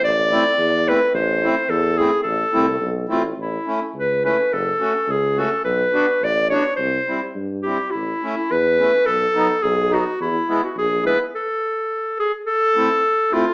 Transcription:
<<
  \new Staff \with { instrumentName = "Clarinet" } { \time 2/4 \key a \minor \tempo 4 = 106 d''4. b'8 | c''4 a'8 gis'8 | a'4. f'8 | \key a \major e'4 b'8 b'8 |
a'4 gis'8 a'8 | b'4 d''8 cis''8 | c''4 r8 g'8 | e'4 b'4 |
a'4 gis'8 fis'8 | e'8. fis'16 gis'8 b'8 | a'4. gis'8 | \key a \minor a'4. f'8 | }
  \new Staff \with { instrumentName = "Accordion" } { \time 2/4 \key a \minor r8 <a c' e'>8 r8 <a c' e'>8 | r8 <a c' e'>8 r8 <a c' e'>8 | r8 <a c' e'>8 r8 <a c' e'>8 | \key a \major r8 <a cis' e'>8 r8 <a cis' e'>8 |
r8 <a cis' fis'>8 r8 <a cis' fis'>8 | r8 <b d' fis'>8 r8 <b d' fis'>8 | r8 <g c' e'>8 r8 <g c' e'>8 | r8 <a cis' e'>8 r8 <a cis' e'>8 |
r8 <fis b dis'>8 r8 <fis b dis'>8 | r8 <gis b e'>8 r8 <gis b e'>8 | r2 | \key a \minor r8 <a c' e'>8 r8 <a c' e'>8 | }
  \new Staff \with { instrumentName = "Tuba" } { \clef bass \time 2/4 \key a \minor a,,4 e,4 | a,,4 e,4 | a,,8 c,8 b,,8 a,,8 | \key a \major a,,8 r8 cis,4 |
fis,,8 r8 cis,4 | b,,8 r8 a,,4 | c,8 r8 g,4 | a,,8 r8 e,4 |
b,,8 r8 b,,4 | e,8 r8 bes,,4 | r2 | \key a \minor r2 | }
>>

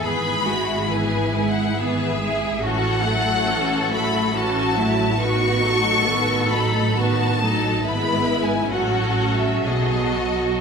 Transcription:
<<
  \new Staff \with { instrumentName = "Violin section" } { \time 3/4 \key e \major \tempo 4 = 69 b''4 \tuplet 3/2 { gis''4 fis''8 } e''4 | fis''4. b''8 a''4 | cis'''4. b''8 a''4 | \tuplet 3/2 { b''4 gis''8 fis''4 e''8 } dis''4 | }
  \new Staff \with { instrumentName = "Violin section" } { \time 3/4 \key e \major <gis' b'>8 <e' gis'>8 <gis' b'>8 <e' gis'>8 <gis' b'>8 <e' gis'>8 | <fis' a'>8 <e' fis'>8 <fis' a'>8 <e' fis'>8 <fis' a'>8 <e' fis'>8 | <fis' b'>8 <dis' a'>8 <fis' b'>8 <dis' a'>8 <fis' b'>8 <dis' a'>8 | <e' b'>4 <fis' a'>4 <fis' a'>4 | }
  \new Staff \with { instrumentName = "Cello section" } { \time 3/4 \key e \major gis'8 fis'8 e'4 gis'4 | fis'8 a'4. fis'8 e'8 | fis'4 a'4 fis'8 dis'8 | e'4 fis'4 gis'8 fis'8 | }
  \new Staff \with { instrumentName = "Viola section" } { \clef bass \time 3/4 \key e \major <e b>8 gis8 <e b>8 gis8 <e b>8 gis8 | <e cis'>8 <fis a>8 <e cis'>8 <fis a>8 <e cis'>8 <fis a>8 | <dis b>8 <fis a>8 <dis b>8 <fis a>8 <dis b>8 <fis a>8 | <gis b>4 <fis cis'>4 <fis b>4 | }
  \new Staff \with { instrumentName = "Double bass section" } { \clef bass \time 3/4 \key e \major gis,,2. | a,,2.~ | a,,2. | gis,,4 a,,4 b,,4 | }
>>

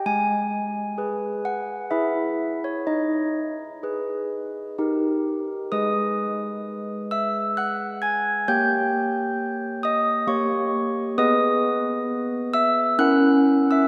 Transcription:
\new Staff \with { instrumentName = "Handbells" } { \time 3/4 \key gis \minor \tempo 4 = 65 << { gis''4. fis''8 e''8. cis''16 | dis''2~ dis''8 r8 | <dis'' dis'''>4. <e'' e'''>8 <fis'' fis'''>8 <gis'' gis'''>8 | <g'' g'''>4. <dis'' dis'''>8 <des'' des'''>4 |
<dis'' dis'''>4. <e'' e'''>8 <fis'' fis'''>8. <e'' e'''>16 | } \\ { gis4 <gis' b'>4 <e' gis' b'>4 | dis'4 <gis' b'>4 <dis' g' ais'>4 | <gis gis' b'>2. | <bes g' des''>2 <bes g'>4 |
<b gis' b'>2 <cis' e' ais'>4 | } >> }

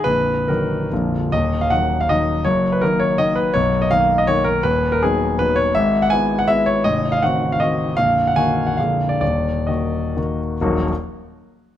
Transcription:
<<
  \new Staff \with { instrumentName = "Grand piano" } { \time 3/4 \key ees \minor \tempo 4 = 157 ces''4 bes'4. r8 | ees''8. f''16 ges''8. f''16 ees''4 | des''8. ces''16 bes'8 des''8 ees''8 ces''8 | des''8. dis''16 f''8. dis''16 des''8 ais'8 |
b'8. bes'16 aes'4 b'8 des''8 | e''8. ges''16 gis''8. ges''16 e''8 des''8 | ees''8. f''16 fis''8. f''16 ees''4 | f''8. ges''16 aes''8. ges''16 f''8. d''16 |
d''4 ees''4. r8 | <ees,, bes,, ges bes ees' ges'>8 r2 r8 | }
  \new Staff \with { instrumentName = "Grand piano" } { \clef bass \time 3/4 \key ees \minor <bes,,, bes,,>4 <ees ges ees'>4 <bes,,, bes,, d f f'>4 | <ees,, ees,>4 <ees ges ees'>4 <ees ges ees'>4 | <ges,, ges,>4 <ees bes ees'>4 <ees bes ees'>4 | <b,,, b,,>4 <dis ais dis'>4 <dis ais dis'>4 |
<dis,, dis,>4 <fis b dis'>4 <fis b dis'>4 | <gis,, gis,>4 <gis b e'>4 <gis b e'>4 | <a,,, a,,>4 <ees c' fis'>4 <ees c' fis'>4 | <bes,,, bes,,>4 <ees bes ges'>4 <bes,,, bes,, d bes aes'>4 |
<ees,, ees,>4 <ees bes ges'>4 <ees bes ges'>4 | r2. | }
>>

